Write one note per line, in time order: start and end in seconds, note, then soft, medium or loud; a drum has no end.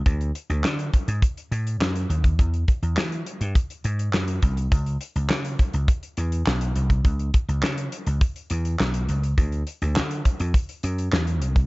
0.06 0.30 D2 loud
0.06 kick loud
0.06 closed hi-hat medium
0.21 closed hi-hat soft
0.35 closed hi-hat medium
0.50 0.62 D2 medium
0.50 closed hi-hat soft
0.64 0.88 D3 loud
0.64 snare loud
0.64 clap loud
0.79 closed hi-hat medium
0.94 kick medium
0.94 closed hi-hat medium
1.08 1.20 G#2 medium
1.08 closed hi-hat medium
1.22 kick loud
1.22 closed hi-hat medium
1.37 closed hi-hat medium
1.51 1.76 A2 medium
1.51 closed hi-hat medium
1.67 closed hi-hat medium
1.81 2.05 F#2 loud
1.81 snare loud
1.81 clap medium
1.96 closed hi-hat medium
2.09 2.34 D#2 medium
2.09 closed hi-hat medium
2.24 kick loud
2.24 closed hi-hat medium
2.39 2.63 E2 loud
2.39 kick loud
2.39 closed hi-hat medium
2.54 closed hi-hat soft
2.68 kick loud
2.68 closed hi-hat medium
2.82 2.95 E2 medium
2.82 closed hi-hat medium
2.97 3.21 E3 loud
2.97 snare loud
2.97 clap loud
3.12 closed hi-hat medium
3.26 closed hi-hat medium
3.41 3.53 G2 medium
3.41 closed hi-hat medium
3.55 kick loud
3.55 closed hi-hat medium
3.70 closed hi-hat medium
3.84 4.09 G#2 medium
3.84 closed hi-hat medium
3.99 closed hi-hat medium
4.13 4.38 F#2 medium
4.13 snare loud
4.13 clap medium
4.28 closed hi-hat medium
4.42 4.67 C2 medium
4.42 kick medium
4.42 closed hi-hat medium
4.57 closed hi-hat soft
4.72 4.96 C#2 loud
4.72 kick loud
4.72 closed hi-hat medium
4.86 closed hi-hat soft
5.01 closed hi-hat medium
5.16 5.28 C#2 medium
5.16 closed hi-hat medium
5.30 5.54 C#3 loud
5.30 snare loud
5.30 clap loud
5.45 closed hi-hat medium
5.59 kick loud
5.59 closed hi-hat medium
5.73 5.86 C#2 medium
5.73 closed hi-hat medium
5.88 kick loud
5.88 closed hi-hat medium
6.03 closed hi-hat medium
6.17 6.42 E2 loud
6.17 closed hi-hat medium
6.32 closed hi-hat medium
6.47 6.71 B1 medium
6.47 snare loud
6.47 clap loud
6.61 closed hi-hat medium
6.76 7.00 C2 medium
6.76 closed hi-hat medium
6.90 kick loud
6.90 closed hi-hat medium
7.05 7.29 C#2 loud
7.05 kick loud
7.05 closed hi-hat medium
7.19 closed hi-hat soft
7.34 kick loud
7.34 closed hi-hat medium
7.49 7.61 C#2 medium
7.49 closed hi-hat soft
7.63 7.87 C#3 loud
7.63 snare loud
7.63 clap loud
7.78 closed hi-hat medium
7.92 closed hi-hat medium
8.07 8.19 C#2 medium
8.07 closed hi-hat medium
8.21 kick loud
8.21 closed hi-hat medium
8.36 closed hi-hat medium
8.50 8.75 E2 medium
8.50 closed hi-hat medium
8.65 closed hi-hat medium
8.80 9.04 B1 medium
8.80 snare loud
8.80 clap loud
8.94 closed hi-hat medium
9.09 9.33 C#2 medium
9.09 closed hi-hat medium
9.23 closed hi-hat medium
9.38 9.62 D2 loud
9.38 kick loud
9.38 closed hi-hat loud
9.52 closed hi-hat soft
9.67 closed hi-hat medium
9.82 9.98 D2 medium
9.82 closed hi-hat soft
9.96 10.21 D3 loud
9.96 snare loud
9.96 clap loud
10.11 closed hi-hat medium
10.25 kick medium
10.25 closed hi-hat medium
10.40 10.52 F2 medium
10.40 closed hi-hat medium
10.54 kick loud
10.54 closed hi-hat medium
10.69 closed hi-hat medium
10.83 11.08 F#2 medium
10.83 closed hi-hat medium
10.98 closed hi-hat medium
11.13 11.42 E2 medium
11.13 snare loud
11.13 clap medium
11.27 closed hi-hat medium
11.42 11.66 C2 medium
11.42 closed hi-hat medium
11.56 kick loud
11.56 closed hi-hat medium